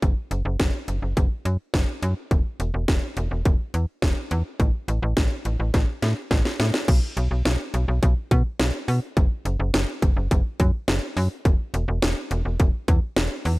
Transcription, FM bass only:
0.02 0.14 F#1 loud
0.31 0.43 F#1 loud
0.45 0.57 F#1 loud
0.60 0.71 F#1 loud
0.88 1.00 F#1 medium
1.02 1.14 F#1 medium
1.17 1.29 F#1 loud
1.45 1.57 F#2 loud
1.74 1.86 F#1 loud
2.03 2.14 F#2 loud
2.31 2.43 E1 loud
2.60 2.71 E1 loud
2.74 2.86 E1 loud
2.88 3.00 E1 loud
3.17 3.29 E1 loud
3.31 3.43 E1 loud
3.45 3.57 E1 loud
3.74 3.86 E2 medium
4.02 4.14 E1 loud
4.31 4.43 E2 loud
4.60 4.71 A1 loud
4.88 5.00 A1 loud
5.02 5.14 A1 loud
5.17 5.29 A1 medium
5.45 5.57 A1 medium
5.60 5.71 A1 loud
5.74 5.86 A1 loud
6.02 6.14 A2 loud
6.31 6.43 A1 loud
6.60 6.71 A2 loud
6.88 7.00 B1 loud
7.17 7.29 B1 loud
7.31 7.43 B1 medium
7.45 7.57 B1 loud
7.74 7.86 B1 loud
7.88 8.00 B1 loud
8.03 8.14 B1 loud
8.31 8.43 B2 loud
8.60 8.71 B1 loud
8.88 9.00 B2 loud
9.17 9.29 F#1 loud
9.45 9.57 F#1 loud
9.60 9.71 F#1 loud
9.74 9.86 F#1 loud
10.02 10.14 F#1 medium
10.17 10.28 F#1 medium
10.31 10.43 F#1 loud
10.60 10.71 F#2 loud
10.88 11.00 F#1 loud
11.17 11.28 F#2 loud
11.45 11.57 E1 loud
11.74 11.86 E1 loud
11.88 12.00 E1 loud
12.02 12.14 E1 loud
12.31 12.43 E1 loud
12.45 12.57 E1 loud
12.60 12.71 E1 loud
12.88 13.00 E2 loud
13.17 13.28 E1 loud
13.45 13.57 E2 loud

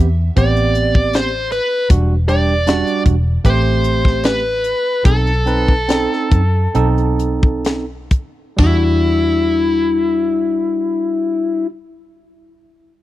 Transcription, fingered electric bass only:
0.00 0.29 E2 medium
0.37 1.59 A1 medium
1.90 2.82 E1 medium
3.06 3.37 E1 medium
3.45 4.72 A1 medium
5.05 6.06 B1 medium
6.32 6.66 F#2 medium
6.75 8.21 B1 medium
8.59 11.66 E2 medium

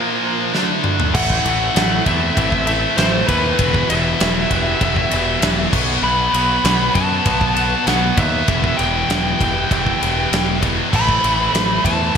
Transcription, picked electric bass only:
1.14 1.38 A1 medium
1.44 1.68 A1 medium
1.76 1.99 A1 loud
2.06 2.30 E2 medium
2.37 2.85 A1 loud
2.98 3.22 A1 medium
3.28 3.52 D#2 loud
3.59 3.83 E1 medium
3.90 4.14 E1 medium
4.21 4.45 E1 medium
4.51 4.75 E1 loud
4.81 5.05 E1 medium
5.12 5.36 E1 loud
5.42 5.66 E1 medium
5.73 5.97 B1 loud
6.02 6.27 B1 loud
6.34 6.58 B1 medium
6.64 6.88 B1 loud
6.95 7.19 F#2 medium
7.26 7.74 B1 loud
7.87 8.11 B1 medium
8.17 8.41 D#2 loud
8.48 8.72 E1 medium
8.79 9.03 E1 medium
9.09 9.33 E1 medium
9.40 9.64 E1 medium
9.71 9.95 E1 loud
10.02 10.26 E1 medium
10.32 10.80 E1 medium
10.93 11.17 A1 medium
11.24 11.47 A1 medium
11.54 11.78 A1 medium
11.84 12.08 E2 medium

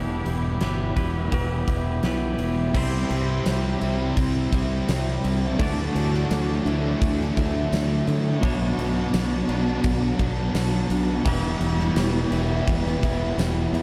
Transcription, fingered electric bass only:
0.00 0.21 E1 medium
0.26 0.57 E1 medium
0.61 0.92 G1 medium
0.97 1.28 E1 medium
1.32 1.63 E1 medium
1.68 1.99 E1 medium
2.03 2.34 B1 medium
2.39 2.70 E1 medium
2.75 3.03 C2 medium
3.10 3.39 C2 medium
3.46 3.75 C2 medium
3.82 4.10 C2 medium
4.17 4.46 C2 medium
4.52 4.81 C2 medium
4.88 5.17 C2 medium
5.24 5.53 C2 medium
5.59 5.88 D2 medium
5.95 6.23 D2 medium
6.31 6.59 D2 medium
6.65 6.94 D2 medium
7.02 7.30 D2 medium
7.38 7.66 D2 medium
7.72 8.00 D2 medium
8.08 8.36 D3 loud
8.43 8.71 B1 loud
8.78 9.06 B1 medium
9.14 9.42 B1 medium
9.49 9.77 B1 medium
9.85 10.13 B1 medium
10.19 10.48 B1 medium
10.54 10.83 B1 medium
10.90 11.18 B1 medium
11.26 11.54 E1 loud
11.61 11.89 E1 medium
11.96 12.25 E1 medium
12.31 12.60 E1 medium
12.67 12.96 E1 medium
13.03 13.31 E1 medium
13.38 13.66 E1 medium
13.72 13.82 E2 loud

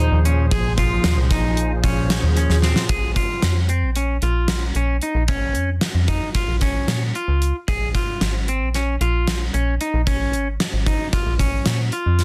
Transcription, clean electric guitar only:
0.00 0.19 D#4 medium
0.25 0.45 C#4 medium
0.52 0.72 G#4 medium
0.79 1.19 F4 medium
1.31 1.71 D#4 medium
1.84 2.24 C#4 medium
2.37 2.57 C#4 medium
2.64 2.84 C4 medium
2.90 3.10 G#4 medium
3.16 3.57 F4 medium
3.69 3.90 C4 medium
3.96 4.16 C#4 medium
4.23 4.63 F4 medium
4.76 4.96 C#4 medium
5.03 5.23 D#4 medium
5.29 5.69 C#4 medium
6.09 6.29 D#4 medium
6.36 6.55 F4 medium
6.62 7.02 C#4 medium
7.16 7.55 F4 medium
7.68 7.88 G#4 medium
7.95 8.35 F4 medium
8.49 8.68 C4 medium
8.75 8.95 C#4 medium
9.01 9.41 F4 medium
9.54 9.74 C#4 medium
9.81 10.01 D#4 medium
10.07 10.47 C#4 medium
10.87 11.07 D#4 medium
11.14 11.33 F4 medium
11.40 11.80 C#4 medium
11.93 12.24 F4 medium

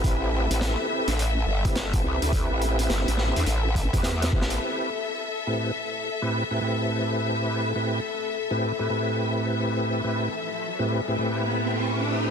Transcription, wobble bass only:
0.04 0.48 A1 loud
0.50 0.76 A1 medium
1.08 1.45 A1 loud
1.47 2.02 G1 loud
2.04 2.19 C2 loud
2.22 2.48 D2 loud
2.50 2.88 A1 loud
2.90 3.05 G1 medium
3.08 3.33 A1 loud
3.36 3.45 E2 medium
3.47 3.91 A1 medium
3.93 4.31 E2 medium
4.32 4.59 A1 loud

